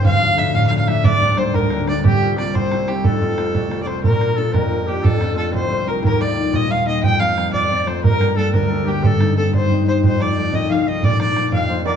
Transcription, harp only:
X:1
M:6/8
L:1/8
Q:3/8=120
K:F
V:1 name="Harp"
[D,,,D,,] [F,A,D] [F,A,D] A,, [F,A,D] [F,A,D] | [D,,,D,,] [G,B,D] [G,B,D] D,, [G,B,D] [G,B,D] | C,, [G,CF] [G,CF] C,, [G,CE] [G,CE] | [F,,,F,,] [A,CF] [A,CF] C,, [A,CF] [A,CF] |
[K:Bb] B,, [B,DF] [B,DF] F,, [B,DF] [B,DF] | F,, [A,CF] [A,CF] C,, [A,CF] [A,CF] | E,, [G,B,E] [G,B,E] B,, [G,B,E] [G,B,E] | F,, [F,B,C] [F,B,C] F,, [F,A,C] [F,A,C] |
G,, [G,B,D] [G,B,D] D,, [G,B,D] [G,B,D] | G,, [G,CE] [G,CE] G,, [G,CE] [G,CE] | F,, [F,A,E] [F,A,E] C,, [F,A,E] [F,A,E] | B,, [F,B,D] [F,B,D] F,, [F,B,D] [F,B,D] |]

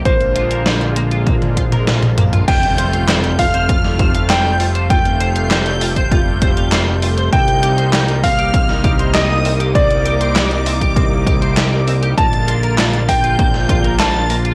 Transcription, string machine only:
X:1
M:4/4
L:1/8
Q:1/4=99
K:Fmix
V:1 name="String machine"
z8 | g'3 f'3 g' z | g'8 | g'3 f'3 e' z |
d'8 | a'3 g'3 a' z |]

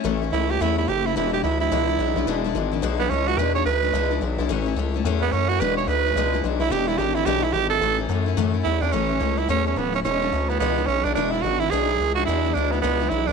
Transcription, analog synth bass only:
X:1
M:4/4
L:1/8
Q:"Swing" 1/4=216
K:A
V:1 name="Analog synth bass" clef=bass
A,,,2 C,,2 E,,2 F,,,2 | E,,,2 D,,2 C,,2 B,,, B,,, | E,,,2 G,,,2 B,,,2 C,,2 | E,,2 D,,2 C,,2 B,,, B,,, |
A,,,2 C,,2 E,,2 F,,2 | E,,,2 D,,2 C,,2 B,,, B,,, | E,,,2 G,,,2 B,,,2 G,,,2 | A,,,2 F,,2 F,,2 E,, E,, |
A,,,2 C,,2 E,,2 D,,,2 | E,,,2 D,,2 C,,2 B,,, B,,, | E,,,2 G,,,2 B,,,2 C,,2 | E,,2 D,,2 C,,2 B,,, B,,, |]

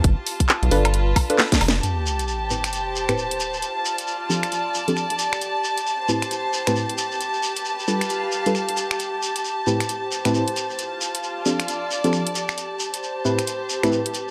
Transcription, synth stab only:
X:1
M:4/4
L:1/16
Q:"Swing 16ths" 1/4=134
K:Am
V:1 name="Synth stab"
z6 [DFAB] z4 [DFAB] z4 | z6 [A,,CEGB] z4 [A,,CEGB]2 z3 | z6 [F,CDGA] z4 [F,CDGA]2 z3 | z6 [A,,CEGB] z4 [A,,CEGB]2 z3 |
z6 [G,DFAB] z4 [G,DFAB] z4 | z6 [A,,CEGB] z4 [A,,CEGB]2 z3 | z6 [F,CDGA] z4 [F,CDGA]2 z3 | z6 [A,,CEGB] z4 [A,,CEGB]2 z3 |]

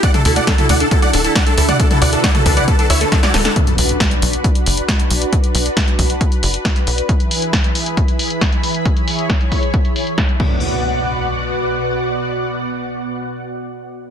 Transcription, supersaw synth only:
X:1
M:4/4
L:1/16
Q:1/4=136
K:Bm
V:1 name="Supersaw synth"
[df] A A [df] A A [df] A A [df] A A [df] A A [df] | A A [df] A [df] A A [df] A A [ce] A A [Fd] A A | z16 | z16 |
z16 | z16 | z16 | z16 |]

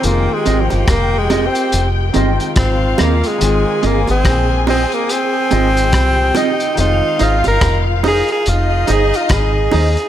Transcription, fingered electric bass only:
X:1
M:4/4
L:1/16
Q:"Swing 16ths" 1/4=71
K:Fm
V:1 name="Fingered electric bass" clef=bass
F,,, z A,,, G,,, F,,,3 z F,,,2 G,,, z A,,,2 E,, z | A,,, z G,,, A,,, B,,,3 z3 A,,,2 C,,2 z2 | F,,, z A,,, G,,, F,,,3 z F,,,2 G,,, z A,,,2 E,, z |]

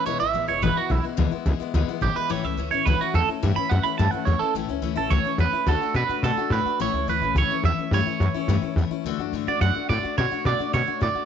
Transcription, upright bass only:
X:1
M:4/4
L:1/8
Q:1/4=214
K:A
V:1 name="Upright bass" clef=bass
E,,, G,,, A,,, E,,, G,,, z B,,, z | D,, z C,, z D,, z G,,, z | A,,, C,, D,, A,,, C,, z E,, z | =G,, z F,, z G,, z E,, z |
A,,, C,, D,, A,,, C,, z E,, z | D,, z B,, z B,, z A,, z | A,,, C,, D,, A,,, C,, z E,, z | =G,, z F,, z G,, z E,, z |
D,, F,, =G,, D,, F,, z A,, z | B,, z B,, z B,, z A,, z |]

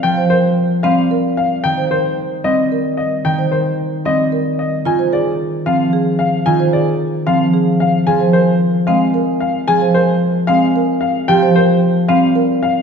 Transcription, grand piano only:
X:1
M:3/4
L:1/16
Q:1/4=112
K:Fm
V:1 name="Grand piano"
g z c z3 f z3 f z | g z c z3 e z3 e z | g z c z3 e z3 e z | a z =d z3 f z3 f z |
a z =d z3 f z3 f z | a z c z3 f z3 f z | a z c z3 f z3 f z | g z c z3 f z3 f z |]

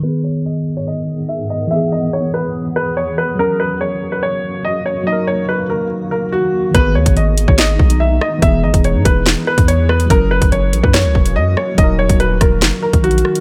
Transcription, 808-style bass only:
X:1
M:4/4
L:1/16
Q:1/4=143
K:G#m
V:1 name="808-style bass" clef=bass
z16 | z16 | z16 | z16 |
G,,,2 D,, G,,, G,,,3 G,,,3 B,,,4 z2 | E,,,2 G,,, E,,,2 G,, E,,,3 z2 E,,4- E,, | F,,,3 F,,, F,,,2 A,,, F,,2 C,, E,,,2 F,,2 z2 | D,,,3 D,,,3 D,,,2 F,,, z2 A,,,3 z2 |]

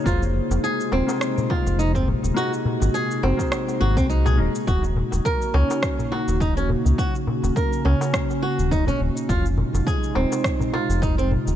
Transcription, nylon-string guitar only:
X:1
M:4/4
L:1/16
Q:"Swing 16ths" 1/4=104
K:Ebdor
V:1 name="Nylon-string guitar"
F z3 A2 C4 F2 E C z2 | G z3 A2 C4 G C E A z2 | G z3 B2 D4 G2 E D z2 | G z3 B2 D4 G2 E D z2 |
F z3 A2 C4 F2 E C z2 |]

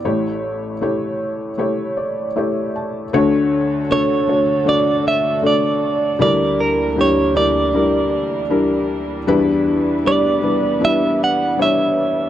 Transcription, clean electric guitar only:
X:1
M:4/4
L:1/8
Q:1/4=78
K:D
V:1 name="Clean electric guitar"
z8 | z2 c2 d e d2 | d _B c d4 z | z2 d2 e f e2 |]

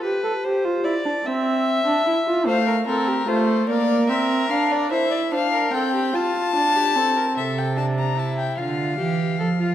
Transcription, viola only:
X:1
M:6/8
L:1/16
Q:3/8=49
K:F
V:1 name="Viola"
G A G F E D C3 D E F | A,2 C2 A,2 B,2 C2 D2 | E2 D2 C2 F2 D2 C2 | z12 |]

